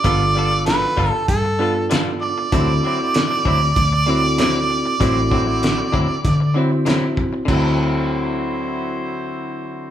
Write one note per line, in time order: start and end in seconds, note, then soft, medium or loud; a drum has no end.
0.00 0.20 F4 medium
0.00 0.66 D5 loud
0.04 0.84 G1 loud
0.04 0.24 G3 medium
0.04 1.20 B3 medium
0.04 0.24 B3 medium
0.04 1.20 D4 medium
0.04 1.20 F4 medium
0.04 0.24 F4 medium
0.04 0.20 A4 medium
0.04 1.20 A4 medium
0.04 0.25 A4 medium
0.04 0.21 B4 medium
0.04 kick loud
0.04 closed hi-hat soft
0.34 0.52 G3 medium
0.34 0.52 B3 medium
0.34 0.97 F4 medium
0.34 0.51 F4 medium
0.34 0.97 A4 medium
0.34 0.98 B4 medium
0.39 0.50 A4 medium
0.51 muted clean electric guitar stroke soft
0.66 1.11 B4 loud
0.66 muted clean electric guitar stroke soft
0.66 snare loud
0.66 closed hi-hat medium
0.82 muted clean electric guitar stroke soft
0.97 1.11 G1 medium
0.97 1.13 G3 medium
0.97 1.14 B3 medium
0.97 1.13 F4 medium
0.97 1.12 A4 medium
0.97 kick medium
1.11 1.25 A4 loud
1.11 muted clean electric guitar stroke soft
1.28 2.34 G2 medium
1.28 1.87 A4 medium
1.28 kick loud
1.28 closed hi-hat medium
1.44 muted clean electric guitar stroke soft
1.59 1.75 G3 medium
1.59 2.46 B3 medium
1.59 1.76 B3 medium
1.59 2.46 D4 medium
1.59 2.46 F4 medium
1.59 1.75 F4 medium
1.59 2.47 A4 medium
1.59 1.74 A4 medium
1.75 muted clean electric guitar stroke soft
1.90 2.09 G3 medium
1.90 2.10 B3 medium
1.90 2.10 F4 medium
1.90 2.10 A4 medium
1.90 snare loud
1.90 closed hi-hat medium
2.21 6.82 D5 loud
2.21 muted clean electric guitar stroke soft
2.38 muted clean electric guitar stroke soft
2.52 2.79 D2 loud
2.52 2.72 D3 medium
2.52 2.72 F#3 medium
2.52 3.68 C4 medium
2.52 2.72 C4 medium
2.52 2.68 E4 medium
2.52 3.68 E4 medium
2.52 2.73 E4 medium
2.52 2.69 F#4 medium
2.52 3.68 F#4 medium
2.52 3.69 A4 medium
2.52 2.69 C5 medium
2.52 kick loud
2.52 closed hi-hat medium
2.83 3.00 D3 medium
2.83 3.00 F#3 medium
2.83 3.00 C4 medium
2.83 3.45 E4 medium
2.83 3.46 F#4 medium
2.83 3.46 C5 medium
2.87 2.99 E4 medium
3.00 muted clean electric guitar stroke soft
3.14 muted clean electric guitar stroke soft
3.14 snare loud
3.14 closed hi-hat medium
3.31 muted clean electric guitar stroke medium
3.45 3.72 D2 medium
3.45 3.62 D3 medium
3.45 3.62 F#3 medium
3.45 3.61 C4 loud
3.45 3.60 E4 loud
3.45 kick medium
3.61 muted clean electric guitar stroke soft
3.76 4.82 D2 loud
3.76 kick loud
3.76 closed hi-hat medium
3.92 muted clean electric guitar stroke medium
4.06 4.23 D3 medium
4.06 4.24 F#3 medium
4.06 4.94 C4 medium
4.06 4.23 C4 medium
4.06 4.94 E4 medium
4.06 4.22 E4 medium
4.06 4.94 F#4 medium
4.06 4.94 A4 medium
4.23 muted clean electric guitar stroke soft
4.38 4.57 D3 medium
4.38 4.58 F#3 medium
4.38 4.58 C4 medium
4.38 4.59 E4 medium
4.38 snare loud
4.38 closed hi-hat medium
4.69 muted clean electric guitar stroke soft
4.85 muted clean electric guitar stroke soft
5.00 5.80 A1 loud
5.00 5.19 D3 medium
5.00 5.20 F#3 loud
5.00 6.15 C4 medium
5.00 5.20 C4 loud
5.00 5.16 E4 medium
5.00 6.16 E4 medium
5.00 5.20 E4 medium
5.00 6.16 F#4 medium
5.00 5.17 F#4 medium
5.00 6.16 A4 medium
5.00 5.17 C5 loud
5.00 kick medium
5.00 closed hi-hat medium
5.30 5.47 D3 medium
5.30 5.48 F#3 medium
5.30 5.47 C4 medium
5.30 5.93 E4 medium
5.30 5.46 E4 medium
5.30 5.93 F#4 medium
5.30 5.94 C5 loud
5.30 kick medium
5.47 muted clean electric guitar stroke soft
5.62 muted clean electric guitar stroke soft
5.62 snare loud
5.62 closed hi-hat medium
5.78 muted clean electric guitar stroke medium
5.92 6.07 D2 medium
5.92 6.09 D3 medium
5.92 6.09 F#3 medium
5.92 6.08 C4 medium
5.92 6.08 E4 medium
5.92 kick medium
6.10 muted fingered electric bass stroke soft
6.25 7.30 D3 loud
6.25 kick loud
6.25 closed hi-hat medium
6.40 muted clean electric guitar stroke soft
6.54 6.71 D3 medium
6.54 6.72 F#3 medium
6.54 7.42 C4 medium
6.54 6.71 C4 medium
6.54 7.42 E4 medium
6.54 6.70 E4 medium
6.54 7.42 F#4 medium
6.54 7.43 C5 medium
6.71 muted clean electric guitar stroke soft
6.86 7.05 D3 medium
6.86 7.05 F#3 medium
6.86 7.06 C4 medium
6.86 7.06 E4 medium
6.86 snare loud
6.86 closed hi-hat medium
7.17 muted clean electric guitar stroke soft
7.17 kick medium
7.33 muted clean electric guitar stroke soft
7.45 9.90 D2 medium
7.45 9.90 D3 medium
7.45 9.90 F#3 medium
7.45 9.90 C4 medium
7.45 9.90 E4 medium
7.45 9.90 F#4 medium
7.45 9.90 C5 loud
7.45 kick loud
7.45 crash medium
7.50 9.90 C4 medium
7.50 9.90 E4 loud
7.50 9.90 F#4 medium
7.50 9.90 A4 medium